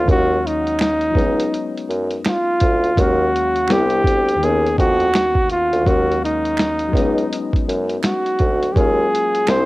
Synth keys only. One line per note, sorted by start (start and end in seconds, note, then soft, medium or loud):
0.00 0.05 D#2 medium
0.00 0.09 A#3 medium
0.00 0.10 B3 medium
0.05 1.15 D#2 medium
0.05 1.16 F#3 medium
0.05 1.12 G#3 medium
0.09 1.17 A#3 medium
0.09 1.18 C#4 medium
0.09 0.18 E4 medium
0.18 1.22 F5 medium
1.10 1.21 F3 medium
1.10 2.92 G#3 medium
1.17 2.94 F#3 medium
1.17 2.94 B3 medium
1.17 2.96 C#4 medium
1.24 2.97 D#4 medium
2.96 3.69 D#2 medium
2.96 3.69 F#3 medium
2.96 3.70 G#3 medium
2.96 3.71 A#3 medium
3.01 3.71 C#4 medium
3.01 3.72 F5 medium
3.67 4.41 G3 medium
3.67 4.41 B3 medium
3.67 4.42 C4 medium
3.72 4.43 D4 medium
3.72 4.44 E4 medium
4.35 5.80 D#2 medium
4.35 5.82 D#3 medium
4.40 5.83 A#3 medium
4.40 5.84 B3 medium
4.46 5.86 C#4 medium
4.46 5.87 D#4 medium
5.83 6.93 D#2 medium
5.83 6.88 F#3 medium
5.83 6.91 G#3 medium
5.83 6.95 A#3 medium
5.89 6.96 C#4 medium
5.89 6.97 F5 medium
6.89 8.69 F#3 medium
6.89 8.71 G#3 medium
6.96 8.72 B3 medium
6.96 8.74 C#4 medium
7.02 8.76 D#4 medium
8.74 9.47 F#3 medium
8.74 9.48 G#3 medium
8.74 9.49 A#3 medium
8.79 9.50 C#4 medium
8.79 9.50 F4 medium
9.47 9.65 G3 medium
9.47 9.65 C4 medium
9.51 9.65 D4 medium
9.51 9.65 E4 medium